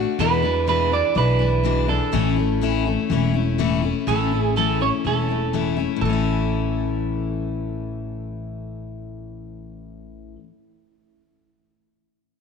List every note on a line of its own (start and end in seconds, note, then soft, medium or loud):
0.00 0.20 A3 soft
0.00 0.19 D4 soft
0.00 0.19 F#4 medium
0.19 1.01 E2 medium
0.19 0.43 E2 medium
0.19 0.44 B2 medium
0.19 0.44 E3 medium
0.19 0.43 G#3 medium
0.19 0.42 D4 medium
0.19 0.41 E4 medium
0.19 0.68 B4 medium
0.43 0.66 E3 soft
0.43 0.67 G#3 soft
0.43 0.68 D4 soft
0.43 0.67 E4 medium
0.67 0.92 E2 medium
0.67 0.92 B2 medium
0.67 0.92 E3 medium
0.67 0.92 G#3 medium
0.67 0.91 D4 medium
0.67 0.90 E4 medium
0.67 0.93 B4 loud
0.91 1.14 E3 soft
0.91 1.15 G#3 soft
0.91 1.16 D4 soft
0.91 1.16 E4 soft
0.91 1.17 D5 loud
1.15 1.98 B1 medium
1.15 1.40 E3 medium
1.15 1.40 G#3 medium
1.15 1.39 D4 medium
1.15 1.38 E4 medium
1.15 1.89 B4 medium
1.39 1.64 E3 soft
1.39 1.64 G#3 soft
1.39 1.64 D4 soft
1.39 1.64 E4 medium
1.64 1.88 E2 medium
1.64 1.89 B2 medium
1.64 1.89 E3 medium
1.64 1.89 G#3 medium
1.64 1.87 D4 medium
1.64 1.87 E4 medium
1.88 2.11 E3 soft
1.88 2.12 G#3 soft
1.88 2.13 D4 soft
1.88 2.13 E4 medium
1.88 3.55 A4 medium
2.12 2.95 A1 medium
2.12 2.37 A2 medium
2.12 2.37 E3 medium
2.12 2.37 A3 medium
2.12 2.37 C#4 medium
2.12 2.35 E4 medium
2.36 2.61 A3 soft
2.36 2.62 C#4 medium
2.36 2.61 E4 medium
2.61 2.86 A2 medium
2.61 2.86 E3 medium
2.61 2.86 A3 medium
2.61 2.86 C#4 medium
2.61 2.84 E4 medium
2.85 3.10 A3 soft
2.85 3.11 C#4 medium
2.85 3.10 E4 medium
3.10 3.92 E1 medium
3.10 3.34 E3 medium
3.10 3.35 A3 medium
3.10 3.34 C#4 medium
3.10 3.33 E4 medium
3.34 3.58 A3 soft
3.34 3.58 C#4 soft
3.34 3.58 E4 medium
3.58 3.83 A2 medium
3.58 3.83 E3 medium
3.58 3.83 A3 medium
3.58 3.82 C#4 medium
3.58 3.81 E4 medium
3.82 4.07 A3 soft
3.82 4.07 C#4 soft
3.82 4.07 E4 medium
4.07 4.89 A1 medium
4.07 4.31 A2 medium
4.07 4.32 E3 medium
4.07 4.32 A3 medium
4.07 4.32 C#4 medium
4.07 4.30 E4 medium
4.07 4.41 A4 medium
4.31 4.56 A3 soft
4.31 4.57 C#4 soft
4.31 4.56 E4 soft
4.41 4.53 G#4 medium
4.56 4.80 A2 medium
4.56 4.81 E3 medium
4.56 4.81 A3 medium
4.56 4.81 C#4 medium
4.56 4.79 E4 medium
4.56 4.79 A4 medium
4.80 5.05 A3 soft
4.80 5.05 C#4 soft
4.80 5.05 E4 soft
4.80 4.88 C#5 loud
5.04 5.86 E1 medium
5.04 5.29 E3 medium
5.04 5.29 A3 medium
5.04 5.29 C#4 medium
5.04 5.27 E4 medium
5.04 5.74 A4 medium
5.29 5.53 A3 soft
5.29 5.53 C#4 soft
5.29 5.53 E4 soft
5.53 5.77 A2 medium
5.53 5.78 E3 medium
5.53 5.78 A3 medium
5.53 5.77 C#4 medium
5.53 5.75 E4 medium
5.77 6.03 A3 soft
5.77 6.02 C#4 soft
5.77 6.01 E4 medium
5.96 10.34 A2 medium
6.01 10.35 A1 medium
6.01 10.39 E3 medium
6.01 10.35 A4 medium
6.05 10.43 A3 medium
6.05 10.47 C#4 medium
6.13 10.50 E4 medium